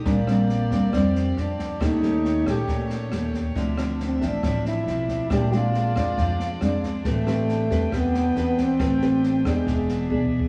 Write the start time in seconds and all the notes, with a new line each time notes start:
Already playing: G4
0.05 A#1 A#2 G3 A#3 C4 D4 D5, kick, snare
0.27 G3 C4 D4, cross-stick, snare
0.49 snare
0.71 F2 G3 C4 D4, kick, snare
0.93 F2 F3 G3 C4 D4, kick, cross-stick, snare
1.15 snare
1.37 F2 D4, snare
1.59 kick, snare
1.80 D#2 D#3 A3 C#4 G4 C#5, kick, cross-stick, snare
1.84 D#4
2.02 A3 C#4 G4, snare
2.25 snare
2.46 A#1 A3 C#4 G4, kick, cross-stick, snare
2.67 A#1 A#2, kick, snare
2.90 snare
3.12 D#2 A3 C#4 G4, cross-stick, snare
3.34 kick, snare
3.55 D2 D3 F3 C4 D4 E4 E5, kick, snare
3.77 F3 C4 E4, cross-stick, snare
4.00 snare
4.05 C4
4.21 A1 F3 C4 D4 E4, kick, snare
4.43 A1 A2 F3 C4 E4, kick, cross-stick, snare
4.65 E4, snare
4.87 B1 F3 C4 E4, snare
5.08 kick, snare
5.30 A#1 A#2 G#3 C4 D4 G4 G#4 D5, kick, cross-stick, snare
5.51 G#3 C4 D4 F4, snare
5.74 snare
5.96 F2 G#3 C4 D4, kick, cross-stick, snare
6.18 F2 F3, kick, snare
6.39 snare
6.61 F2 G#3 C4 D4, cross-stick, snare
6.83 kick, snare
7.05 A1 A3 C4 G4 B4 G5, kick, snare
7.09 A3
7.27 C4 G4 B4, cross-stick, snare
7.49 snare
7.70 E2 C4 G4 B4, kick, snare
7.92 E2 E3 B3 C4 G4 B4, kick, cross-stick, snare
8.14 snare
8.36 E2 B3 C4 G4 B4, snare
8.58 C4, kick, snare
8.80 A1 A3 C4 G4 B4, kick, cross-stick, snare
9.01 C4 G4 B4, snare
9.23 snare
9.45 E2 G#3 B3 D4 G#4, kick, cross-stick, snare
9.67 E1 E3 D4 G#4 E5, kick, snare
9.89 snare
10.10 B1 B3 D4 G#4, kick
10.25 kick
10.39 kick